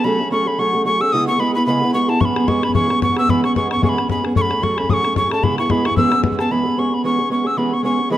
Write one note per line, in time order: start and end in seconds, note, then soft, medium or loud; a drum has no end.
0.04 0.20 F#3 medium
0.04 0.20 A3 medium
0.04 0.20 C#4 medium
0.04 0.18 G#4 medium
0.04 0.31 B5 medium
0.19 0.31 A3 soft
0.19 0.31 C#4 soft
0.19 0.31 G#4 medium
0.31 0.46 F#3 medium
0.31 0.46 A3 medium
0.31 0.47 C#4 medium
0.31 0.45 G#4 medium
0.31 0.49 C#6 medium
0.46 0.58 A3 soft
0.46 0.58 C#4 soft
0.46 0.58 G#4 soft
0.46 0.61 B5 medium
0.58 0.74 F#3 medium
0.58 0.74 A3 medium
0.58 0.74 C#4 medium
0.58 0.72 G#4 medium
0.58 0.85 C#6 loud
0.73 0.86 A3 medium
0.73 0.85 C#4 soft
0.73 0.85 G#4 medium
0.85 1.01 F#3 medium
0.85 1.01 A3 medium
0.85 1.01 C#4 medium
0.85 0.99 G#4 soft
0.85 1.03 C#6 medium
1.00 1.13 A3 medium
1.00 1.13 C#4 soft
1.00 1.12 G#4 medium
1.00 1.14 E6 loud
1.12 1.28 C#3 medium
1.12 1.28 G#3 medium
1.12 1.28 B3 medium
1.12 1.28 E4 medium
1.12 1.26 G#4 medium
1.12 1.27 D#6 loud
1.28 1.38 B3 soft
1.28 1.39 E4 soft
1.28 1.40 G#4 soft
1.28 1.41 C#6 medium
1.38 1.54 G#3 medium
1.38 1.55 B3 medium
1.38 1.55 E4 medium
1.38 1.53 G#4 medium
1.38 1.54 B5 medium
1.54 1.67 B3 soft
1.54 1.67 E4 soft
1.54 1.66 G#4 soft
1.54 1.66 B5 medium
1.66 1.82 C#3 medium
1.66 1.82 G#3 medium
1.66 1.82 B3 medium
1.66 1.82 E4 medium
1.66 1.80 G#4 medium
1.66 1.92 B5 loud
1.81 1.94 B3 soft
1.81 1.94 E4 soft
1.81 1.93 G#4 soft
1.94 2.09 G#3 medium
1.94 2.09 B3 medium
1.94 2.08 E4 medium
1.94 2.07 G#4 medium
1.94 2.11 C#6 medium
2.08 2.20 B3 soft
2.08 2.21 E4 medium
2.08 2.20 G#4 medium
2.08 2.22 A5 medium
2.20 2.36 E3 medium
2.20 2.36 G#3 medium
2.20 2.36 B3 medium
2.20 2.36 C#4 medium
2.20 2.35 G#4 medium
2.20 2.26 C#6 medium
2.20 bodhran medium
2.25 2.50 B5 medium
2.36 2.47 B3 soft
2.36 2.48 C#4 soft
2.36 2.48 G#4 medium
2.36 bodhran medium
2.47 2.63 G#3 medium
2.47 2.63 B3 medium
2.47 2.63 C#4 medium
2.47 2.61 G#4 medium
2.47 2.65 C#6 medium
2.47 bodhran medium
2.62 2.75 B3 soft
2.62 2.75 C#4 soft
2.62 2.74 G#4 soft
2.62 2.74 B5 medium
2.62 bodhran medium
2.69 bodhran soft
2.75 2.90 E3 medium
2.75 2.90 G#3 medium
2.75 2.90 B3 medium
2.75 2.90 C#4 medium
2.75 2.89 G#4 medium
2.75 3.00 C#6 loud
2.75 bodhran medium
2.90 3.02 B3 soft
2.90 3.02 C#4 soft
2.90 bodhran medium
3.01 3.17 G#3 medium
3.01 3.17 B3 medium
3.01 3.17 C#4 medium
3.01 3.15 G#4 medium
3.01 3.16 C#6 medium
3.01 bodhran medium
3.10 bodhran soft
3.16 3.28 B3 soft
3.16 3.29 C#4 medium
3.16 3.28 G#4 medium
3.16 3.32 E6 loud
3.16 bodhran medium
3.28 3.43 E3 medium
3.28 3.44 G#3 medium
3.28 3.44 B3 medium
3.28 3.44 C#4 medium
3.28 3.42 G#4 medium
3.28 3.44 B5 medium
3.28 bodhran medium
3.44 3.55 B3 soft
3.44 3.56 C#4 medium
3.44 3.55 G#4 soft
3.44 3.55 C#6 medium
3.44 bodhran medium
3.55 3.70 G#3 medium
3.55 3.71 B3 medium
3.55 3.70 C#4 medium
3.55 3.69 G#4 medium
3.55 3.70 C#6 medium
3.55 bodhran medium
3.70 3.82 B3 soft
3.70 3.82 C#4 soft
3.70 3.82 G#4 soft
3.70 3.82 C#6 medium
3.70 bodhran medium
3.77 bodhran soft
3.82 3.97 E3 medium
3.82 3.97 G#3 medium
3.82 3.98 B3 medium
3.82 3.97 C#4 medium
3.82 3.96 G#4 medium
3.82 3.90 C#6 loud
3.82 bodhran medium
3.89 4.08 B5 loud
3.97 4.08 B3 soft
3.97 4.09 C#4 medium
3.97 4.09 G#4 soft
3.97 bodhran medium
4.08 4.24 G#3 medium
4.08 4.24 B3 medium
4.08 4.24 C#4 medium
4.08 4.22 G#4 medium
4.08 4.24 B5 medium
4.08 bodhran medium
4.17 bodhran soft
4.24 4.36 B3 soft
4.24 4.35 C#4 soft
4.24 4.36 G#4 medium
4.24 bodhran medium
4.35 4.50 F#3 medium
4.35 4.50 A3 medium
4.35 4.51 C#4 medium
4.35 4.48 G#4 medium
4.35 4.43 C#6 medium
4.35 bodhran medium
4.42 4.65 B5 medium
4.50 4.62 A3 soft
4.50 4.61 C#4 soft
4.50 4.62 G#4 soft
4.50 bodhran soft
4.62 4.77 F#3 medium
4.62 4.77 A3 medium
4.62 4.78 C#4 medium
4.62 4.75 G#4 medium
4.62 4.80 C#6 medium
4.62 bodhran medium
4.76 4.89 A3 soft
4.76 4.88 C#4 soft
4.76 4.89 G#4 soft
4.76 4.92 B5 medium
4.76 bodhran medium
4.83 bodhran soft
4.89 5.04 F#3 medium
4.89 5.04 A3 medium
4.89 5.04 C#4 medium
4.89 5.02 G#4 medium
4.89 4.95 D#6 medium
4.89 bodhran medium
4.94 5.16 C#6 loud
5.03 5.16 A3 soft
5.03 5.15 C#4 soft
5.03 5.16 G#4 medium
5.03 bodhran medium
5.15 5.31 F#3 medium
5.15 5.31 A3 medium
5.15 5.31 C#4 medium
5.15 5.29 G#4 medium
5.15 5.31 C#6 medium
5.15 bodhran medium
5.24 bodhran soft
5.30 5.43 A3 soft
5.30 5.43 C#4 soft
5.30 5.42 G#4 medium
5.30 5.45 A5 medium
5.30 bodhran medium
5.42 5.58 C#3 medium
5.42 5.58 G#3 medium
5.42 5.58 B3 medium
5.42 5.58 E4 medium
5.42 5.57 G#4 medium
5.42 5.58 B5 medium
5.42 bodhran medium
5.58 5.69 B3 soft
5.58 5.70 E4 soft
5.58 5.70 G#4 soft
5.58 5.73 C#6 medium
5.58 bodhran medium
5.69 5.84 G#3 medium
5.69 5.85 B3 medium
5.69 5.85 E4 medium
5.69 5.84 G#4 medium
5.69 5.87 B5 medium
5.69 bodhran medium
5.85 5.97 E4 soft
5.85 5.97 G#4 soft
5.85 5.97 C#6 medium
5.85 bodhran medium
5.91 bodhran soft
5.97 6.12 E3 medium
5.97 6.12 G#3 medium
5.97 6.12 B3 medium
5.97 6.12 C#4 medium
5.97 6.10 G#4 medium
5.97 6.21 E6 medium
5.97 bodhran medium
6.11 6.23 B3 soft
6.11 6.23 C#4 soft
6.11 6.23 G#4 medium
6.11 bodhran medium
6.23 6.38 G#3 medium
6.23 6.39 B3 medium
6.23 6.39 C#4 medium
6.23 6.37 G#4 medium
6.23 bodhran medium
6.32 bodhran soft
6.39 6.51 B3 soft
6.39 6.51 C#4 medium
6.39 6.50 G#4 medium
6.39 6.53 A5 medium
6.39 bodhran medium
6.51 6.65 E3 medium
6.51 6.66 G#3 medium
6.51 6.66 B3 medium
6.51 6.65 C#4 medium
6.51 6.64 G#4 medium
6.51 6.80 B5 medium
6.65 6.77 B3 soft
6.65 6.77 C#4 soft
6.65 6.77 G#4 soft
6.76 6.92 G#3 medium
6.76 6.92 B3 medium
6.76 6.92 C#4 medium
6.76 6.90 G#4 medium
6.76 6.95 C#6 medium
6.92 7.04 B3 soft
6.92 7.04 C#4 soft
6.92 7.04 G#4 soft
6.92 7.05 B5 medium
7.04 7.19 E3 medium
7.04 7.19 G#3 medium
7.04 7.19 B3 medium
7.04 7.19 C#4 medium
7.04 7.17 G#4 medium
7.04 7.29 C#6 medium
7.18 7.29 B3 soft
7.18 7.30 C#4 soft
7.18 7.30 G#4 medium
7.30 7.45 G#3 soft
7.30 7.45 B3 medium
7.30 7.45 C#4 soft
7.30 7.43 G#4 soft
7.30 7.48 C#6 medium
7.44 7.57 B3 soft
7.44 7.57 C#4 soft
7.44 7.57 G#4 soft
7.44 7.59 E6 medium
7.57 7.72 E3 medium
7.57 7.73 G#3 medium
7.57 7.73 B3 medium
7.57 7.72 C#4 medium
7.57 7.70 G#4 medium
7.57 7.75 B5 medium
7.71 7.83 B3 soft
7.71 7.84 C#4 soft
7.71 7.84 G#4 soft
7.71 7.84 C#6 medium
7.83 7.99 G#3 medium
7.83 7.99 B3 medium
7.83 7.99 C#4 medium
7.83 7.97 G#4 medium
7.83 8.09 C#6 medium
7.99 8.10 B3 soft
7.99 8.10 C#4 soft
7.99 8.11 G#4 soft
8.10 8.18 E3 medium
8.10 8.18 G#3 medium
8.10 8.18 B3 medium
8.10 8.18 C#4 medium
8.10 8.18 G#4 medium
8.10 8.18 B5 loud